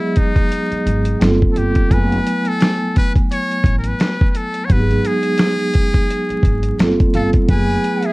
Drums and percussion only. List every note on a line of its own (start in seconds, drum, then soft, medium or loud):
0.16 kick medium
0.16 closed hi-hat medium
0.36 kick medium
0.36 closed hi-hat soft
0.52 closed hi-hat medium
0.72 closed hi-hat soft
0.87 closed hi-hat medium
1.05 closed hi-hat medium
1.21 snare loud
1.21 closed hi-hat medium
1.42 kick medium
1.56 closed hi-hat medium
1.75 kick medium
1.75 closed hi-hat soft
1.91 kick loud
1.91 closed hi-hat medium
2.12 closed hi-hat soft
2.27 closed hi-hat medium
2.45 closed hi-hat soft
2.60 snare loud
2.60 closed hi-hat medium
2.96 kick medium
2.96 closed hi-hat medium
3.16 kick medium
3.16 closed hi-hat soft
3.32 closed hi-hat medium
3.52 closed hi-hat soft
3.64 kick medium
3.64 closed hi-hat medium
3.84 closed hi-hat medium
4.00 snare loud
4.00 closed hi-hat medium
4.21 kick medium
4.35 closed hi-hat medium
4.54 closed hi-hat soft
4.70 kick loud
4.70 closed hi-hat medium
4.91 closed hi-hat soft
5.05 closed hi-hat medium
5.23 closed hi-hat medium
5.38 snare loud
5.38 closed hi-hat medium
5.59 closed hi-hat soft
5.74 kick medium
5.74 closed hi-hat medium
5.94 kick medium
5.94 closed hi-hat soft
6.10 closed hi-hat medium
6.30 closed hi-hat soft
6.43 kick medium
6.43 closed hi-hat medium
6.63 closed hi-hat medium
6.79 snare medium
6.79 closed hi-hat medium
7.00 kick medium
7.00 closed hi-hat soft
7.14 closed hi-hat medium
7.33 kick medium
7.33 closed hi-hat soft
7.49 kick loud
7.49 closed hi-hat medium
7.70 closed hi-hat soft
7.84 closed hi-hat medium
8.02 closed hi-hat soft